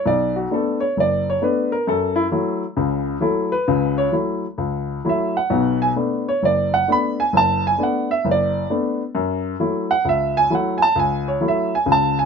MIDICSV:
0, 0, Header, 1, 2, 480
1, 0, Start_track
1, 0, Key_signature, 3, "minor"
1, 0, Tempo, 454545
1, 63, Time_signature, 4, 2, 24, 8
1, 12940, End_track
2, 0, Start_track
2, 0, Title_t, "Upright piano"
2, 0, Program_c, 0, 0
2, 59, Note_on_c, 0, 35, 67
2, 76, Note_on_c, 0, 74, 80
2, 374, Note_off_c, 0, 74, 0
2, 380, Note_on_c, 0, 66, 53
2, 475, Note_off_c, 0, 35, 0
2, 539, Note_off_c, 0, 66, 0
2, 541, Note_on_c, 0, 57, 50
2, 547, Note_on_c, 0, 59, 41
2, 547, Note_on_c, 0, 62, 55
2, 570, Note_on_c, 0, 69, 62
2, 849, Note_on_c, 0, 73, 73
2, 859, Note_off_c, 0, 69, 0
2, 870, Note_off_c, 0, 57, 0
2, 873, Note_off_c, 0, 59, 0
2, 873, Note_off_c, 0, 62, 0
2, 1010, Note_off_c, 0, 73, 0
2, 1026, Note_on_c, 0, 30, 56
2, 1059, Note_on_c, 0, 74, 86
2, 1341, Note_off_c, 0, 74, 0
2, 1368, Note_on_c, 0, 73, 76
2, 1434, Note_off_c, 0, 30, 0
2, 1497, Note_on_c, 0, 57, 50
2, 1502, Note_on_c, 0, 59, 45
2, 1507, Note_on_c, 0, 62, 59
2, 1508, Note_off_c, 0, 73, 0
2, 1516, Note_on_c, 0, 71, 65
2, 1808, Note_off_c, 0, 71, 0
2, 1818, Note_on_c, 0, 70, 78
2, 1824, Note_off_c, 0, 57, 0
2, 1827, Note_off_c, 0, 59, 0
2, 1829, Note_off_c, 0, 62, 0
2, 1972, Note_off_c, 0, 70, 0
2, 1978, Note_on_c, 0, 42, 65
2, 1990, Note_on_c, 0, 69, 77
2, 2278, Note_on_c, 0, 64, 81
2, 2284, Note_off_c, 0, 69, 0
2, 2378, Note_off_c, 0, 64, 0
2, 2387, Note_off_c, 0, 42, 0
2, 2446, Note_on_c, 0, 54, 54
2, 2449, Note_on_c, 0, 57, 50
2, 2452, Note_on_c, 0, 64, 50
2, 2775, Note_off_c, 0, 54, 0
2, 2776, Note_off_c, 0, 57, 0
2, 2777, Note_off_c, 0, 64, 0
2, 2920, Note_on_c, 0, 49, 63
2, 2922, Note_on_c, 0, 37, 64
2, 3335, Note_off_c, 0, 49, 0
2, 3336, Note_off_c, 0, 37, 0
2, 3386, Note_on_c, 0, 54, 51
2, 3387, Note_on_c, 0, 57, 44
2, 3395, Note_on_c, 0, 64, 58
2, 3405, Note_on_c, 0, 69, 56
2, 3707, Note_off_c, 0, 69, 0
2, 3718, Note_on_c, 0, 71, 84
2, 3723, Note_off_c, 0, 54, 0
2, 3724, Note_off_c, 0, 57, 0
2, 3728, Note_off_c, 0, 64, 0
2, 3882, Note_on_c, 0, 49, 73
2, 3885, Note_on_c, 0, 37, 62
2, 4162, Note_off_c, 0, 71, 0
2, 4201, Note_on_c, 0, 73, 81
2, 4297, Note_off_c, 0, 49, 0
2, 4298, Note_off_c, 0, 37, 0
2, 4351, Note_on_c, 0, 54, 46
2, 4354, Note_on_c, 0, 57, 45
2, 4359, Note_off_c, 0, 73, 0
2, 4359, Note_on_c, 0, 64, 50
2, 4689, Note_off_c, 0, 54, 0
2, 4690, Note_off_c, 0, 57, 0
2, 4693, Note_off_c, 0, 64, 0
2, 4835, Note_on_c, 0, 37, 55
2, 5261, Note_off_c, 0, 37, 0
2, 5327, Note_on_c, 0, 57, 42
2, 5330, Note_on_c, 0, 54, 48
2, 5340, Note_on_c, 0, 64, 53
2, 5378, Note_on_c, 0, 76, 68
2, 5664, Note_off_c, 0, 57, 0
2, 5664, Note_off_c, 0, 76, 0
2, 5665, Note_off_c, 0, 54, 0
2, 5669, Note_on_c, 0, 78, 74
2, 5670, Note_off_c, 0, 64, 0
2, 5808, Note_on_c, 0, 35, 64
2, 5810, Note_on_c, 0, 47, 65
2, 6109, Note_off_c, 0, 78, 0
2, 6144, Note_on_c, 0, 80, 86
2, 6232, Note_off_c, 0, 35, 0
2, 6233, Note_off_c, 0, 47, 0
2, 6242, Note_off_c, 0, 80, 0
2, 6295, Note_on_c, 0, 57, 48
2, 6296, Note_on_c, 0, 59, 42
2, 6303, Note_on_c, 0, 62, 47
2, 6635, Note_off_c, 0, 57, 0
2, 6635, Note_off_c, 0, 59, 0
2, 6637, Note_on_c, 0, 73, 81
2, 6639, Note_off_c, 0, 62, 0
2, 6785, Note_on_c, 0, 30, 58
2, 6792, Note_off_c, 0, 73, 0
2, 6814, Note_on_c, 0, 74, 86
2, 7110, Note_off_c, 0, 74, 0
2, 7115, Note_on_c, 0, 78, 90
2, 7207, Note_off_c, 0, 30, 0
2, 7265, Note_on_c, 0, 57, 49
2, 7269, Note_on_c, 0, 59, 42
2, 7273, Note_off_c, 0, 78, 0
2, 7273, Note_on_c, 0, 62, 56
2, 7310, Note_on_c, 0, 83, 80
2, 7600, Note_off_c, 0, 83, 0
2, 7602, Note_on_c, 0, 80, 87
2, 7603, Note_off_c, 0, 57, 0
2, 7604, Note_off_c, 0, 59, 0
2, 7606, Note_off_c, 0, 62, 0
2, 7742, Note_on_c, 0, 30, 67
2, 7756, Note_off_c, 0, 80, 0
2, 7784, Note_on_c, 0, 81, 97
2, 8074, Note_off_c, 0, 81, 0
2, 8099, Note_on_c, 0, 80, 87
2, 8162, Note_off_c, 0, 30, 0
2, 8219, Note_on_c, 0, 57, 46
2, 8224, Note_on_c, 0, 59, 45
2, 8231, Note_on_c, 0, 62, 54
2, 8244, Note_off_c, 0, 80, 0
2, 8271, Note_on_c, 0, 78, 68
2, 8556, Note_off_c, 0, 57, 0
2, 8556, Note_off_c, 0, 78, 0
2, 8558, Note_off_c, 0, 59, 0
2, 8562, Note_off_c, 0, 62, 0
2, 8564, Note_on_c, 0, 76, 83
2, 8708, Note_on_c, 0, 30, 63
2, 8715, Note_off_c, 0, 76, 0
2, 8779, Note_on_c, 0, 74, 87
2, 9121, Note_off_c, 0, 30, 0
2, 9188, Note_on_c, 0, 57, 50
2, 9190, Note_off_c, 0, 74, 0
2, 9195, Note_on_c, 0, 62, 52
2, 9196, Note_on_c, 0, 59, 49
2, 9514, Note_off_c, 0, 57, 0
2, 9518, Note_off_c, 0, 59, 0
2, 9518, Note_off_c, 0, 62, 0
2, 9659, Note_on_c, 0, 42, 72
2, 10072, Note_off_c, 0, 42, 0
2, 10136, Note_on_c, 0, 54, 46
2, 10136, Note_on_c, 0, 57, 47
2, 10140, Note_on_c, 0, 64, 54
2, 10462, Note_on_c, 0, 78, 88
2, 10466, Note_off_c, 0, 54, 0
2, 10466, Note_off_c, 0, 57, 0
2, 10468, Note_off_c, 0, 64, 0
2, 10610, Note_on_c, 0, 37, 58
2, 10616, Note_off_c, 0, 78, 0
2, 10654, Note_on_c, 0, 76, 84
2, 10939, Note_off_c, 0, 76, 0
2, 10953, Note_on_c, 0, 80, 102
2, 11027, Note_off_c, 0, 37, 0
2, 11091, Note_on_c, 0, 54, 52
2, 11096, Note_on_c, 0, 64, 54
2, 11097, Note_on_c, 0, 57, 44
2, 11102, Note_off_c, 0, 80, 0
2, 11138, Note_on_c, 0, 78, 64
2, 11381, Note_on_c, 0, 80, 74
2, 11402, Note_off_c, 0, 80, 0
2, 11422, Note_off_c, 0, 78, 0
2, 11424, Note_off_c, 0, 54, 0
2, 11427, Note_off_c, 0, 57, 0
2, 11427, Note_off_c, 0, 64, 0
2, 11430, Note_on_c, 0, 81, 107
2, 11569, Note_on_c, 0, 37, 66
2, 11580, Note_off_c, 0, 81, 0
2, 11610, Note_on_c, 0, 80, 85
2, 11897, Note_off_c, 0, 80, 0
2, 11912, Note_on_c, 0, 73, 67
2, 11987, Note_off_c, 0, 37, 0
2, 12045, Note_on_c, 0, 54, 50
2, 12052, Note_on_c, 0, 57, 44
2, 12053, Note_on_c, 0, 64, 51
2, 12061, Note_off_c, 0, 73, 0
2, 12125, Note_on_c, 0, 76, 74
2, 12383, Note_off_c, 0, 54, 0
2, 12386, Note_off_c, 0, 57, 0
2, 12386, Note_off_c, 0, 64, 0
2, 12397, Note_off_c, 0, 76, 0
2, 12409, Note_on_c, 0, 80, 85
2, 12524, Note_on_c, 0, 37, 59
2, 12525, Note_on_c, 0, 49, 57
2, 12553, Note_off_c, 0, 80, 0
2, 12586, Note_on_c, 0, 81, 97
2, 12872, Note_on_c, 0, 80, 82
2, 12874, Note_off_c, 0, 81, 0
2, 12940, Note_off_c, 0, 37, 0
2, 12940, Note_off_c, 0, 49, 0
2, 12940, Note_off_c, 0, 80, 0
2, 12940, End_track
0, 0, End_of_file